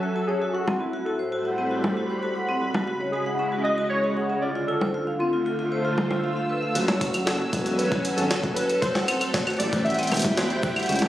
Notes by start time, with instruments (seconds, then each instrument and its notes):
Already playing: string machine F#3 C#4 A4 E5 G#5, synth keys A4
0.03 vibraphone F#4
0.16 vibraphone F#4
0.27 synth keys G#4, vibraphone C#5
0.42 vibraphone F#4
0.53 string machine A2, synth keys F#4, vibraphone F#5
0.68 string machine A3, vibraphone C4, low conga
0.79 synth keys E4, vibraphone F#4
0.93 vibraphone F#4
1.00 string machine B5
1.05 vibraphone F#4, synth keys A4
1.13 string machine C5
1.19 string machine G3, vibraphone C5
1.32 vibraphone F#4
1.45 vibraphone F#5
1.58 vibraphone C4
1.71 vibraphone F#4
1.84 vibraphone F#4, low conga
1.97 vibraphone F#4
2.10 vibraphone C5
2.23 vibraphone F#4
2.36 vibraphone F#5
2.49 vibraphone C4
2.62 string machine C#3, vibraphone F#4
2.72 string machine G#3, vibraphone F#4, low conga
2.87 vibraphone F#4
3.00 vibraphone C#5
3.11 string machine E4, vibraphone F#4, synth keys G#4
3.23 string machine D#5, vibraphone F#5
3.39 vibraphone C#4
3.52 vibraphone F#4
3.63 vibraphone F#4, synth keys D#5
3.78 vibraphone F#4
3.90 synth keys C#5, vibraphone C#5
4.04 vibraphone F#4
4.17 vibraphone F#5
4.30 vibraphone C#4
4.41 string machine D3, vibraphone F4, synth keys D5
4.55 vibraphone F4
4.67 vibraphone F4, synth keys A4
4.81 vibraphone C5, low conga
4.88 string machine A3
4.94 vibraphone F4
5.07 vibraphone F5
5.19 vibraphone C4, synth keys F4, string machine F4
5.33 vibraphone F4
5.46 vibraphone F4, string machine C5 E6
5.59 vibraphone F4
5.72 vibraphone C5
5.85 vibraphone F4
5.98 vibraphone C5, low conga
6.11 vibraphone F4, low conga
6.24 vibraphone F5
6.36 vibraphone F5
6.49 vibraphone B4
6.62 vibraphone F5
6.75 detuned saw bass F#1, string machine F#3, vibraphone F#4, closed hi-hat
6.88 vibraphone C#5, snare, closed hi-hat, low conga
7.00 synth keys F#4, vibraphone F#4, kick, closed hi-hat
7.14 string machine C#4, vibraphone F#5, closed hi-hat, cabasa, claves
7.25 vibraphone C#4, synth keys A4, string machine G#5, snare
7.40 vibraphone F#4
7.53 detuned saw bass E1, vibraphone F#4, kick, closed hi-hat
7.66 vibraphone F#4, string machine A4, closed hi-hat
7.77 synth keys B4, vibraphone C#5, closed hi-hat
7.92 vibraphone F#4, kick, closed hi-hat
8.05 vibraphone F#5, closed hi-hat
8.16 detuned saw bass G#1, vibraphone C#4, synth keys A4, closed hi-hat
8.30 detuned saw bass F#1, vibraphone F#4, snare, closed hi-hat
8.43 vibraphone F#4, kick, closed hi-hat
8.55 vibraphone F#4, synth keys B4, closed hi-hat
8.69 vibraphone C#5, closed hi-hat
8.81 string machine A3, vibraphone F#4, synth keys C5, kick, closed hi-hat
8.95 vibraphone F#5, snare, closed hi-hat, low conga
9.08 vibraphone C4, string machine G5, closed hi-hat, claves
9.21 vibraphone F#4, closed hi-hat, claves
9.27 string machine E4
9.34 vibraphone F#4, kick, snare, closed hi-hat
9.47 vibraphone F#4, closed hi-hat, claves
9.50 string machine G3, closed hi-hat
9.53 closed hi-hat
9.57 synth keys D5, closed hi-hat
9.60 detuned saw bass A1, vibraphone C5, closed hi-hat
9.73 vibraphone F#4, string machine C5, kick, closed hi-hat
9.84 synth keys E5, vibraphone F#5, closed hi-hat
9.90 closed hi-hat
9.94 closed hi-hat
9.99 vibraphone C4, closed hi-hat
10.03 closed hi-hat
10.07 closed hi-hat
10.12 detuned saw bass E1, vibraphone F#4, closed hi-hat, low conga, cabasa, claves
10.14 closed hi-hat, cabasa
10.17 closed hi-hat
10.19 closed hi-hat, cabasa
10.22 vibraphone F#4, closed hi-hat
10.25 kick, closed hi-hat, low conga
10.36 vibraphone F#4, synth keys C5, snare, closed hi-hat
10.50 vibraphone C5, closed hi-hat
10.63 vibraphone F#4, kick, cabasa
10.76 vibraphone F#5, closed hi-hat, claves
10.79 closed hi-hat
10.83 closed hi-hat
10.86 detuned saw bass C#2, string machine C#3, vibraphone C#4, closed hi-hat
10.89 closed hi-hat
10.92 closed hi-hat
10.96 closed hi-hat
10.99 vibraphone F#4, snare, closed hi-hat, low conga
11.05 string machine C#4